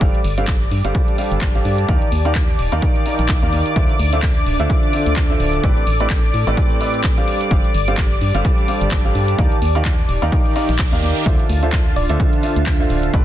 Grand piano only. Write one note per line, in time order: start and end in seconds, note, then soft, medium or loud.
0.01 0.18 G3 medium
0.01 0.18 D4 medium
0.01 0.18 G4 medium
0.01 0.18 A4 medium
0.01 0.18 C5 medium
0.01 0.18 F5 medium
0.38 0.53 G3 medium
0.38 0.53 D4 medium
0.38 0.53 G4 medium
0.38 0.53 A4 medium
0.38 0.53 C5 medium
0.38 0.53 F5 medium
0.84 1.16 G3 medium
0.84 1.16 D4 medium
0.84 1.16 G4 medium
0.84 1.16 A4 medium
0.84 1.16 C5 medium
0.84 1.16 F5 loud
1.18 1.52 G3 medium
1.18 1.52 D4 medium
1.18 1.52 G4 medium
1.18 1.52 A4 medium
1.18 1.52 C5 medium
1.18 1.52 F5 medium
1.55 1.86 G3 medium
1.55 1.86 D4 medium
1.55 1.86 G4 medium
1.55 1.86 A4 medium
1.55 1.86 C5 medium
1.55 1.86 F5 medium
1.89 2.06 D#3 medium
1.89 2.06 D#4 medium
1.89 2.06 G4 medium
1.89 2.06 A#4 medium
1.89 2.06 D5 medium
1.89 2.06 F5 medium
2.25 2.41 D#3 medium
2.25 2.41 D#4 medium
2.25 2.41 G4 medium
2.25 2.41 A#4 medium
2.25 2.41 D5 medium
2.25 2.41 F5 medium
2.72 3.03 D#3 medium
2.72 3.03 D#4 medium
2.72 3.03 G4 medium
2.72 3.03 A#4 medium
2.72 3.03 D5 medium
2.72 3.03 F5 loud
3.06 3.39 D#3 medium
3.06 3.39 D#4 medium
3.06 3.39 G4 medium
3.06 3.39 A#4 medium
3.06 3.39 D5 medium
3.06 3.39 F5 medium
3.42 3.74 D#3 medium
3.42 3.74 D#4 medium
3.42 3.74 G4 medium
3.42 3.74 A#4 medium
3.42 3.74 D5 medium
3.42 3.74 F5 medium
3.76 3.93 D3 medium
3.76 3.93 D4 medium
3.76 3.93 F4 medium
3.76 3.93 A4 medium
3.76 3.93 C5 medium
3.76 3.93 E5 medium
4.13 4.28 D3 medium
4.13 4.28 D4 medium
4.13 4.28 F4 medium
4.13 4.28 A4 medium
4.13 4.28 C5 medium
4.13 4.28 E5 medium
4.60 4.91 D3 medium
4.60 4.91 D4 medium
4.60 4.91 F4 medium
4.60 4.91 A4 medium
4.60 4.91 C5 medium
4.60 4.91 E5 loud
4.93 5.27 D3 medium
4.93 5.27 D4 medium
4.93 5.27 F4 medium
4.93 5.27 A4 medium
4.93 5.27 C5 medium
4.93 5.27 E5 medium
5.30 5.61 D3 medium
5.30 5.61 D4 medium
5.30 5.61 F4 medium
5.30 5.61 A4 medium
5.30 5.61 C5 medium
5.30 5.61 E5 medium
5.64 5.81 A2 medium
5.64 5.81 C4 medium
5.64 5.81 G4 medium
5.64 5.81 A4 medium
5.64 5.81 B4 medium
5.64 5.81 D5 medium
6.00 6.16 A2 medium
6.00 6.16 C4 medium
6.00 6.16 G4 medium
6.00 6.16 A4 medium
6.00 6.16 B4 medium
6.00 6.16 D5 medium
6.47 6.78 A2 medium
6.47 6.78 C4 medium
6.47 6.78 G4 medium
6.47 6.78 A4 medium
6.47 6.78 B4 medium
6.47 6.78 D5 loud
6.81 7.14 A2 medium
6.81 7.14 C4 medium
6.81 7.14 G4 medium
6.81 7.14 A4 medium
6.81 7.14 B4 medium
6.81 7.14 D5 medium
7.17 7.49 G3 medium
7.17 7.49 D4 medium
7.17 7.49 G4 medium
7.17 7.49 A4 medium
7.17 7.49 C5 medium
7.17 7.49 F5 medium
7.51 7.68 G3 medium
7.51 7.68 D4 medium
7.51 7.68 G4 medium
7.51 7.68 A4 medium
7.51 7.68 C5 medium
7.51 7.68 F5 medium
7.88 8.03 G3 medium
7.88 8.03 D4 medium
7.88 8.03 G4 medium
7.88 8.03 A4 medium
7.88 8.03 C5 medium
7.88 8.03 F5 medium
8.35 8.66 G3 loud
8.35 8.66 D4 medium
8.35 8.66 G4 medium
8.35 8.66 A4 medium
8.35 8.66 C5 medium
8.35 8.66 F5 loud
8.68 9.02 G3 medium
8.68 9.02 D4 medium
8.68 9.02 G4 medium
8.68 9.02 A4 medium
8.68 9.02 C5 medium
8.68 9.02 F5 medium
9.05 9.36 G3 medium
9.05 9.36 D4 medium
9.05 9.36 G4 medium
9.05 9.36 A4 medium
9.05 9.36 C5 medium
9.05 9.36 F5 medium
9.38 9.56 D#3 medium
9.38 9.56 D#4 medium
9.38 9.56 G4 medium
9.38 9.56 A#4 medium
9.38 9.56 D5 medium
9.38 9.56 F5 medium
9.75 9.91 D#3 medium
9.75 9.91 D#4 medium
9.75 9.91 G4 medium
9.75 9.91 A#4 medium
9.75 9.91 D5 medium
9.75 9.91 F5 medium
10.22 10.53 D#3 medium
10.22 10.53 D#4 medium
10.22 10.53 G4 medium
10.22 10.53 A#4 medium
10.22 10.53 D5 medium
10.22 10.53 F5 loud
10.56 10.67 D#3 medium
10.56 10.67 D#4 medium
10.56 10.67 G4 medium
10.56 10.67 A#4 medium
10.56 10.67 D5 medium
10.56 10.67 F5 loud
10.92 11.24 D#3 medium
10.92 11.24 D#4 medium
10.92 11.24 G4 medium
10.92 11.24 A#4 medium
10.92 11.24 D5 medium
10.92 11.24 F5 medium
11.26 11.43 D3 medium
11.26 11.43 D4 medium
11.26 11.43 F4 medium
11.26 11.43 A4 medium
11.26 11.43 C5 medium
11.26 11.43 E5 medium
11.63 11.78 D3 medium
11.63 11.78 D4 medium
11.63 11.78 F4 medium
11.63 11.78 A4 medium
11.63 11.78 C5 medium
11.63 11.78 E5 medium
12.09 12.41 D3 medium
12.09 12.41 D4 medium
12.09 12.41 F4 medium
12.09 12.41 A4 medium
12.09 12.41 C5 medium
12.09 12.41 E5 loud
12.43 12.77 D3 medium
12.43 12.77 D4 medium
12.43 12.77 F4 medium
12.43 12.77 A4 medium
12.43 12.77 C5 medium
12.43 12.77 E5 medium
12.80 13.11 D3 medium
12.80 13.11 D4 medium
12.80 13.11 F4 medium
12.80 13.11 A4 medium
12.80 13.11 C5 medium
12.80 13.11 E5 medium
13.13 13.25 A2 medium
13.13 13.25 C4 medium
13.13 13.25 G4 medium
13.13 13.25 A4 medium
13.13 13.25 B4 medium
13.13 13.25 D5 medium